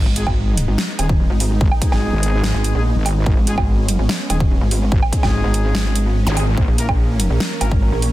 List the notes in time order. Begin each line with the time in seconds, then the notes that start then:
Already playing: G#3 B3 D#4
0.06 G#1
0.16 G#3 D#4 G#4, closed hi-hat
0.27 G#1, kick, low woodblock
0.57 closed hi-hat
0.68 G#1
0.78 snare
0.99 D#1 G#3 D#4 G#4, closed hi-hat, low woodblock
1.09 kick
1.30 G#1
1.40 open hi-hat
1.61 G#1, kick
1.72 low woodblock
1.82 G#3 D#4 G#4, kick, closed hi-hat
1.92 G#1, snare, low woodblock
2.13 G#1
2.23 closed hi-hat
2.44 snare
2.54 G#1
2.64 closed hi-hat
2.75 A#1 G#3 D#4 G#4
2.96 G#1
3.06 open hi-hat, low woodblock
3.26 G#1 C#4, kick
3.37 G#1
3.47 G#3 D#4 G#4, closed hi-hat
3.58 G#1, kick, low woodblock
3.88 closed hi-hat
3.99 G#1
4.09 snare
4.30 D#1 G#3 D#4 G#4, closed hi-hat, low woodblock
4.40 kick
4.61 G#1
4.71 open hi-hat
4.92 G#1, kick
5.03 low woodblock
5.13 G#3 D#4 G#4, kick, closed hi-hat
5.23 G#1, kick, snare, low woodblock
5.44 G#1
5.54 closed hi-hat
5.75 snare
5.95 closed hi-hat
6.27 G#1 G#3 D#4 G#4, zap
6.37 G#3 D#4 G#4, open hi-hat, low woodblock
6.57 A#1 E3 A#3 A#4, kick
6.68 A#1
6.78 A#3 E4 A#4, closed hi-hat
6.89 A#1 A#5, kick, low woodblock
7.20 closed hi-hat
7.30 A#1 C#6
7.40 snare
7.61 G#1 A#3 E4 A#4, closed hi-hat, low woodblock
7.71 kick
7.92 A#1
8.02 open hi-hat